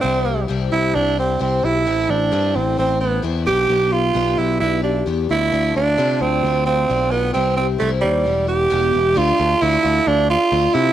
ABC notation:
X:1
M:4/4
L:1/8
Q:1/4=131
K:Ddor
V:1 name="Tenor saxophone"
C2 z E D C C E- | E D2 C C B, z G- | G F2 E E D z E- | E D2 C2 C2 B, |
C C A, G,2 G3 | F2 E2 D F2 E |]
V:2 name="Twelve-string acoustic guitar"
[C,E,G,CE] [G,CE] [C,E,G,CE]2 [E,G,CE] [G,CE] [C,E,G,CE] [G,CE] | [A,,E,A,CE] [A,CE] [A,,E,A,CE]2 [E,A,CE] [A,CE] [A,,E,A,CE] [DGB] | [B,DGB] [DGB] [B,DGB]2 [B,DGB] [DGB] [B,DGB] [A,DF] | [D,A,DF] [A,DF] [D,A,DF]2 [D,A,DF] [A,DF] [D,A,DF] [A,DF] |
[C,E,G,CE] [G,CE] [C,E,G,CE]2 [E,G,B,E] [E,G,B,E] [E,,B,,E,G,B,E] [E,G,B,E] | [D,A,DF] [A,DF] [D,A,DF] [A,DF]3 [D,A,DF] [A,DF] |]
V:3 name="Picked electric bass" clef=bass
C,,2 C,, C,, C,,2 C,, B,,, | A,,, A,,, G,, A,,, A,,,2 E,, B,,, | B,,,2 B,,, B,,, B,,,2 E,, D,, | D,, D,, C, D,, D,,2 B,,,2 |
C,,2 C,, ^D,, E,,,2 E,,, E,,, | D,, D,, D,, D,, D,,2 D,, C, |]